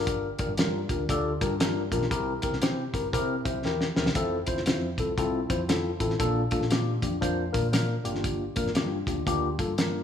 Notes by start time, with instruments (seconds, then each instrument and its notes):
Already playing: fingered electric bass G1, tine electric piano D4 F4 G4 A#4
0.07 kick, closed hi-hat
0.39 tine electric piano D4 F4 G4 A#4, kick, closed hi-hat
0.48 fingered electric bass G1
0.57 fingered electric bass G2, tine electric piano D4 F4 G4 A#4, snare, closed hi-hat
0.89 fingered electric bass D2, tine electric piano D4 F4 G4 A#4, kick, closed hi-hat
1.09 fingered electric bass D2, tine electric piano D4 F4 G4 A4, kick, closed hi-hat
1.40 fingered electric bass G2, tine electric piano D4 F4 G4 A#4, kick, closed hi-hat
1.60 tine electric piano D4 F4 G4 A#4, snare, closed hi-hat
1.92 fingered electric bass B1, tine electric piano D4 F4 G4 A#4, kick, closed hi-hat
2.02 snare
2.10 tine electric piano C4 E4 G4 A#4, kick, closed hi-hat
2.42 tine electric piano C4 E4 G4 A#4, kick, closed hi-hat
2.53 fingered electric bass C2, snare
2.62 fingered electric bass C3, tine electric piano C4 E4 G4 C5, snare, closed hi-hat
2.93 fingered electric bass G1, tine electric piano C4 E4 G4 A#4, kick, closed hi-hat
3.13 fingered electric bass C3, tine electric piano C4 E4 G4 A#4, kick, closed hi-hat
3.44 fingered electric bass C2, tine electric piano C4 E4 G4 C5 E5, kick, closed hi-hat
3.64 fingered electric bass E2, tine electric piano C4 E4 G4 A#4 G5, snare
3.81 snare
3.95 fingered electric bass D2, tine electric piano C4 E4 G4 A#4, snare
4.06 fingered electric bass C2, snare
4.15 fingered electric bass F1, tine electric piano C4 E4 F4 A4, kick, closed hi-hat
4.47 tine electric piano C4 E4 F4 C5, kick, closed hi-hat
4.57 fingered electric bass F1, snare
4.66 fingered electric bass F2, tine electric piano C4 E4 F4 C5, snare, closed hi-hat
4.98 fingered electric bass C2, tine electric piano C4 E4 F4 A4, kick, closed hi-hat
5.18 fingered electric bass C2, tine electric piano C4 E4 F4 A4, kick, closed hi-hat
5.49 fingered electric bass F2, tine electric piano C4 E4 F4 C5, kick, closed hi-hat
5.68 tine electric piano C4 E4 F4 A4, snare, closed hi-hat
6.00 fingered electric bass A1, tine electric piano C4 E4 F4 A4, kick, closed hi-hat
6.10 snare
6.19 fingered electric bass A#1, tine electric piano A#3 D4 F4 A4, kick, closed hi-hat
6.51 tine electric piano A#3 D4 F4 A4, kick, closed hi-hat
6.61 fingered electric bass A#1, snare
6.71 fingered electric bass A#2, tine electric piano A#3 D4 F4 G4, snare, closed hi-hat
7.02 fingered electric bass F2, tine electric piano A#3 D4 F4 G4, kick, closed hi-hat
7.21 fingered electric bass F2, tine electric piano A#3 D4 F4 C5, kick, closed hi-hat
7.52 fingered electric bass A#2, tine electric piano A#3 D4 F4 A#4, kick, closed hi-hat
7.72 tine electric piano A#3 D4 F4 A#4, snare, closed hi-hat
8.04 fingered electric bass G1, tine electric piano A#3 D4 F4 G4, closed hi-hat
8.15 snare
8.24 kick, closed hi-hat
8.55 tine electric piano A#3 D4 F4 A#4, kick, closed hi-hat
8.66 fingered electric bass G1, snare
8.75 fingered electric bass G2, tine electric piano A#3 D4 F4 G4, snare, closed hi-hat
9.07 fingered electric bass D2, tine electric piano A#3 D4 F4 G4, kick, closed hi-hat
9.26 fingered electric bass D2, tine electric piano A#3 D4 F4 G4, kick, closed hi-hat
9.58 fingered electric bass G2, tine electric piano A#3 D4 F4 A4, kick, closed hi-hat
9.78 tine electric piano A#3 D4 F4 A#4, snare, closed hi-hat